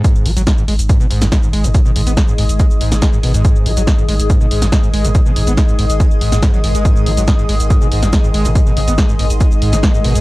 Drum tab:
HH |x-oxx-oxx-oxx-ox|x-oxx-oxx-oxx-ox|x-oxx-oxx-oxx-ox|x-oxx-oxx-oxx-ox|
SH |xx-xxx-xxx-xxx-x|xx-xxx-xxx-xxx-x|xx-xxx-xxx-xxx-x|xx-xxx-xxx-xxx-x|
SD |----o------oo---|----o------oo---|----o------oo---|----o------oo---|
BD |o---o---o---o---|o---o---o---o---|o---o---o---o---|o---o---o---o---|

HH |x-oxx-oxx-oxx-ox|x-oxx-oxx-oxx-ox|
SH |xx-xxx-xxx-xxx-x|xx-xxx-xxx-xxx-x|
SD |----o------oo---|----o------oo---|
BD |o---o---o---o---|o---o---o---o---|